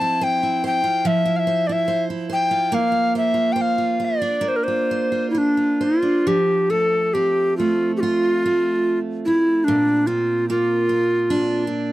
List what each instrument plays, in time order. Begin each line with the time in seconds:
Already playing: steel-string acoustic guitar F3 C4 C5, recorder A5
0.01 steel-string acoustic guitar E4
0.21 steel-string acoustic guitar C5, recorder G5
0.43 steel-string acoustic guitar E4
0.64 steel-string acoustic guitar C5, recorder G5
0.84 steel-string acoustic guitar F4
1.05 steel-string acoustic guitar F3, recorder E5
1.26 steel-string acoustic guitar E4
1.36 recorder E5 F5
1.47 steel-string acoustic guitar C5
1.67 steel-string acoustic guitar E4, recorder D5
1.72 recorder E5
1.88 steel-string acoustic guitar C5
2.10 steel-string acoustic guitar E4
2.29 steel-string acoustic guitar C5, recorder G5
2.51 steel-string acoustic guitar F4
2.72 steel-string acoustic guitar A#3, recorder F5
2.92 steel-string acoustic guitar F4
3.15 steel-string acoustic guitar C5, recorder E5
3.34 steel-string acoustic guitar F4
3.53 steel-string acoustic guitar C5, recorder G5
3.61 recorder F5
3.78 steel-string acoustic guitar F4
4.00 steel-string acoustic guitar C5
4.05 recorder D5
4.22 steel-string acoustic guitar D4
4.41 steel-string acoustic guitar A#3
4.48 recorder C5
4.56 recorder A#4
4.64 recorder C5
4.68 steel-string acoustic guitar F4
4.91 steel-string acoustic guitar C5
5.12 steel-string acoustic guitar F4
5.30 recorder E4
5.35 recorder D4, steel-string acoustic guitar C5
5.57 steel-string acoustic guitar F4
5.81 recorder F4, steel-string acoustic guitar C5
6.02 steel-string acoustic guitar D4
6.27 steel-string acoustic guitar F3, recorder G4
6.70 steel-string acoustic guitar A3, recorder A4
7.14 steel-string acoustic guitar C4, recorder G4
7.57 steel-string acoustic guitar A3, recorder F4
7.97 recorder F4 G4
8.03 steel-string acoustic guitar F4
8.46 steel-string acoustic guitar A3
9.25 steel-string acoustic guitar A3, recorder E4
9.64 steel-string acoustic guitar A#2, recorder D4
10.07 steel-string acoustic guitar C4, recorder F4
10.49 steel-string acoustic guitar A#3, recorder F4
10.89 steel-string acoustic guitar C4
11.30 steel-string acoustic guitar D4
11.67 steel-string acoustic guitar C4